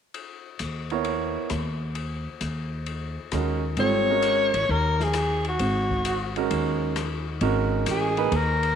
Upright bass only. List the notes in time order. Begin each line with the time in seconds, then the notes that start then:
0.60 D#2
1.50 D#2
2.41 D#2
3.32 D#2
3.77 G#1
4.54 A1
4.69 D#2
5.60 G#1
6.51 D#2
7.41 G#1
7.87 A1
8.32 D#2